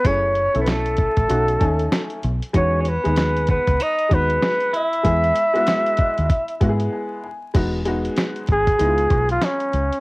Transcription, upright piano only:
0, 0, Header, 1, 2, 480
1, 0, Start_track
1, 0, Key_signature, 4, "major"
1, 0, Tempo, 625000
1, 35, Time_signature, 4, 2, 24, 8
1, 7681, End_track
2, 0, Start_track
2, 0, Title_t, "Upright piano"
2, 0, Program_c, 0, 0
2, 32, Note_on_c, 0, 57, 72
2, 37, Note_on_c, 0, 61, 63
2, 42, Note_on_c, 0, 64, 63
2, 46, Note_on_c, 0, 68, 78
2, 280, Note_off_c, 0, 57, 0
2, 283, Note_off_c, 0, 61, 0
2, 285, Note_off_c, 0, 64, 0
2, 287, Note_off_c, 0, 68, 0
2, 412, Note_on_c, 0, 57, 69
2, 419, Note_on_c, 0, 61, 69
2, 424, Note_on_c, 0, 64, 65
2, 427, Note_on_c, 0, 69, 80
2, 969, Note_off_c, 0, 57, 0
2, 972, Note_off_c, 0, 61, 0
2, 975, Note_off_c, 0, 64, 0
2, 976, Note_off_c, 0, 69, 0
2, 985, Note_on_c, 0, 57, 79
2, 990, Note_on_c, 0, 61, 69
2, 994, Note_on_c, 0, 63, 68
2, 999, Note_on_c, 0, 66, 86
2, 1193, Note_off_c, 0, 57, 0
2, 1195, Note_off_c, 0, 61, 0
2, 1197, Note_off_c, 0, 63, 0
2, 1200, Note_off_c, 0, 66, 0
2, 1223, Note_on_c, 0, 57, 80
2, 1226, Note_on_c, 0, 61, 74
2, 1232, Note_on_c, 0, 63, 70
2, 1238, Note_on_c, 0, 80, 84
2, 1722, Note_off_c, 0, 57, 0
2, 1723, Note_off_c, 0, 61, 0
2, 1726, Note_off_c, 0, 63, 0
2, 1729, Note_off_c, 0, 80, 0
2, 1946, Note_on_c, 0, 56, 78
2, 1948, Note_on_c, 0, 59, 67
2, 1955, Note_on_c, 0, 63, 66
2, 1959, Note_on_c, 0, 66, 79
2, 2197, Note_off_c, 0, 56, 0
2, 2198, Note_off_c, 0, 59, 0
2, 2202, Note_off_c, 0, 63, 0
2, 2203, Note_off_c, 0, 66, 0
2, 2332, Note_on_c, 0, 56, 71
2, 2334, Note_on_c, 0, 59, 70
2, 2340, Note_on_c, 0, 63, 69
2, 2345, Note_on_c, 0, 68, 75
2, 2889, Note_off_c, 0, 56, 0
2, 2890, Note_off_c, 0, 59, 0
2, 2893, Note_off_c, 0, 63, 0
2, 2895, Note_off_c, 0, 68, 0
2, 3142, Note_on_c, 0, 56, 66
2, 3147, Note_on_c, 0, 59, 65
2, 3151, Note_on_c, 0, 63, 64
2, 3155, Note_on_c, 0, 66, 75
2, 3641, Note_off_c, 0, 56, 0
2, 3644, Note_off_c, 0, 59, 0
2, 3646, Note_off_c, 0, 63, 0
2, 3648, Note_off_c, 0, 66, 0
2, 3866, Note_on_c, 0, 56, 78
2, 3871, Note_on_c, 0, 59, 72
2, 3876, Note_on_c, 0, 64, 71
2, 3880, Note_on_c, 0, 68, 83
2, 4117, Note_off_c, 0, 56, 0
2, 4119, Note_off_c, 0, 59, 0
2, 4122, Note_off_c, 0, 64, 0
2, 4124, Note_off_c, 0, 68, 0
2, 4253, Note_on_c, 0, 56, 90
2, 4255, Note_on_c, 0, 59, 79
2, 4263, Note_on_c, 0, 64, 79
2, 4269, Note_on_c, 0, 66, 95
2, 4595, Note_on_c, 0, 75, 70
2, 4809, Note_off_c, 0, 56, 0
2, 4810, Note_off_c, 0, 59, 0
2, 4814, Note_off_c, 0, 64, 0
2, 4817, Note_off_c, 0, 66, 0
2, 4818, Note_off_c, 0, 75, 0
2, 4833, Note_on_c, 0, 76, 72
2, 5057, Note_off_c, 0, 76, 0
2, 5073, Note_on_c, 0, 56, 76
2, 5076, Note_on_c, 0, 59, 79
2, 5079, Note_on_c, 0, 64, 74
2, 5081, Note_on_c, 0, 78, 64
2, 5085, Note_on_c, 0, 66, 74
2, 5137, Note_on_c, 0, 68, 85
2, 5141, Note_off_c, 0, 66, 0
2, 5301, Note_off_c, 0, 78, 0
2, 5320, Note_on_c, 0, 80, 68
2, 5541, Note_off_c, 0, 80, 0
2, 5558, Note_on_c, 0, 80, 67
2, 5566, Note_off_c, 0, 56, 0
2, 5568, Note_off_c, 0, 59, 0
2, 5570, Note_off_c, 0, 64, 0
2, 5598, Note_off_c, 0, 68, 0
2, 5780, Note_off_c, 0, 80, 0
2, 5789, Note_on_c, 0, 56, 78
2, 5794, Note_on_c, 0, 59, 75
2, 5798, Note_on_c, 0, 63, 74
2, 5805, Note_on_c, 0, 66, 91
2, 5972, Note_off_c, 0, 56, 0
2, 5975, Note_off_c, 0, 59, 0
2, 5977, Note_off_c, 0, 63, 0
2, 5980, Note_off_c, 0, 66, 0
2, 6031, Note_on_c, 0, 56, 83
2, 6034, Note_on_c, 0, 59, 76
2, 6041, Note_on_c, 0, 63, 77
2, 6045, Note_on_c, 0, 66, 93
2, 6701, Note_off_c, 0, 56, 0
2, 6703, Note_off_c, 0, 59, 0
2, 6706, Note_off_c, 0, 63, 0
2, 6708, Note_off_c, 0, 66, 0
2, 6749, Note_on_c, 0, 56, 75
2, 6756, Note_on_c, 0, 59, 67
2, 6759, Note_on_c, 0, 63, 69
2, 6764, Note_on_c, 0, 64, 69
2, 6814, Note_on_c, 0, 65, 81
2, 6821, Note_off_c, 0, 64, 0
2, 7530, Note_off_c, 0, 56, 0
2, 7534, Note_off_c, 0, 59, 0
2, 7535, Note_off_c, 0, 63, 0
2, 7563, Note_off_c, 0, 65, 0
2, 7681, End_track
0, 0, End_of_file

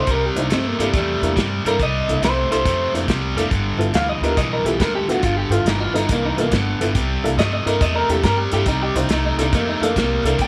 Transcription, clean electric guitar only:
0, 0, Header, 1, 2, 480
1, 0, Start_track
1, 0, Tempo, 429799
1, 82, Time_signature, 4, 2, 24, 8
1, 11700, End_track
2, 0, Start_track
2, 0, Title_t, "Clean electric guitar"
2, 0, Program_c, 0, 27
2, 124, Note_on_c, 0, 70, 77
2, 288, Note_off_c, 0, 70, 0
2, 288, Note_on_c, 0, 67, 83
2, 421, Note_off_c, 0, 67, 0
2, 426, Note_on_c, 0, 63, 73
2, 569, Note_off_c, 0, 63, 0
2, 594, Note_on_c, 0, 60, 79
2, 754, Note_off_c, 0, 60, 0
2, 754, Note_on_c, 0, 58, 75
2, 893, Note_off_c, 0, 58, 0
2, 907, Note_on_c, 0, 55, 83
2, 1050, Note_off_c, 0, 55, 0
2, 1081, Note_on_c, 0, 55, 81
2, 1527, Note_off_c, 0, 55, 0
2, 1873, Note_on_c, 0, 70, 75
2, 2013, Note_off_c, 0, 70, 0
2, 2041, Note_on_c, 0, 75, 84
2, 2487, Note_off_c, 0, 75, 0
2, 2509, Note_on_c, 0, 72, 86
2, 2803, Note_off_c, 0, 72, 0
2, 2816, Note_on_c, 0, 72, 87
2, 3275, Note_off_c, 0, 72, 0
2, 4415, Note_on_c, 0, 77, 87
2, 4563, Note_off_c, 0, 77, 0
2, 4571, Note_on_c, 0, 75, 76
2, 4721, Note_off_c, 0, 75, 0
2, 4727, Note_on_c, 0, 70, 75
2, 4879, Note_off_c, 0, 70, 0
2, 4887, Note_on_c, 0, 75, 75
2, 5039, Note_off_c, 0, 75, 0
2, 5058, Note_on_c, 0, 70, 79
2, 5205, Note_off_c, 0, 70, 0
2, 5205, Note_on_c, 0, 67, 86
2, 5371, Note_off_c, 0, 67, 0
2, 5371, Note_on_c, 0, 70, 96
2, 5521, Note_off_c, 0, 70, 0
2, 5532, Note_on_c, 0, 67, 83
2, 5682, Note_off_c, 0, 67, 0
2, 5701, Note_on_c, 0, 66, 72
2, 5844, Note_off_c, 0, 66, 0
2, 5849, Note_on_c, 0, 65, 88
2, 5993, Note_off_c, 0, 65, 0
2, 5993, Note_on_c, 0, 67, 74
2, 6152, Note_off_c, 0, 67, 0
2, 6164, Note_on_c, 0, 65, 74
2, 6330, Note_off_c, 0, 65, 0
2, 6330, Note_on_c, 0, 63, 79
2, 6482, Note_off_c, 0, 63, 0
2, 6482, Note_on_c, 0, 65, 97
2, 6636, Note_off_c, 0, 65, 0
2, 6649, Note_on_c, 0, 63, 87
2, 6800, Note_off_c, 0, 63, 0
2, 6839, Note_on_c, 0, 58, 86
2, 6975, Note_off_c, 0, 58, 0
2, 6984, Note_on_c, 0, 63, 81
2, 7128, Note_off_c, 0, 63, 0
2, 7151, Note_on_c, 0, 58, 83
2, 7311, Note_off_c, 0, 58, 0
2, 7311, Note_on_c, 0, 59, 102
2, 7761, Note_off_c, 0, 59, 0
2, 8255, Note_on_c, 0, 75, 82
2, 8403, Note_off_c, 0, 75, 0
2, 8416, Note_on_c, 0, 75, 72
2, 8563, Note_off_c, 0, 75, 0
2, 8565, Note_on_c, 0, 70, 82
2, 8718, Note_off_c, 0, 70, 0
2, 8733, Note_on_c, 0, 75, 80
2, 8881, Note_off_c, 0, 75, 0
2, 8886, Note_on_c, 0, 70, 85
2, 9038, Note_off_c, 0, 70, 0
2, 9049, Note_on_c, 0, 67, 85
2, 9200, Note_off_c, 0, 67, 0
2, 9201, Note_on_c, 0, 70, 96
2, 9348, Note_on_c, 0, 67, 80
2, 9355, Note_off_c, 0, 70, 0
2, 9509, Note_off_c, 0, 67, 0
2, 9535, Note_on_c, 0, 67, 78
2, 9682, Note_off_c, 0, 67, 0
2, 9696, Note_on_c, 0, 63, 87
2, 9843, Note_off_c, 0, 63, 0
2, 9854, Note_on_c, 0, 67, 89
2, 10002, Note_off_c, 0, 67, 0
2, 10004, Note_on_c, 0, 63, 84
2, 10156, Note_off_c, 0, 63, 0
2, 10201, Note_on_c, 0, 63, 89
2, 10330, Note_off_c, 0, 63, 0
2, 10344, Note_on_c, 0, 63, 84
2, 10487, Note_off_c, 0, 63, 0
2, 10518, Note_on_c, 0, 63, 93
2, 10654, Note_off_c, 0, 63, 0
2, 10661, Note_on_c, 0, 58, 90
2, 10805, Note_off_c, 0, 58, 0
2, 10822, Note_on_c, 0, 63, 82
2, 10966, Note_off_c, 0, 63, 0
2, 10984, Note_on_c, 0, 58, 93
2, 11126, Note_off_c, 0, 58, 0
2, 11144, Note_on_c, 0, 58, 103
2, 11597, Note_off_c, 0, 58, 0
2, 11632, Note_on_c, 0, 79, 105
2, 11700, Note_off_c, 0, 79, 0
2, 11700, End_track
0, 0, End_of_file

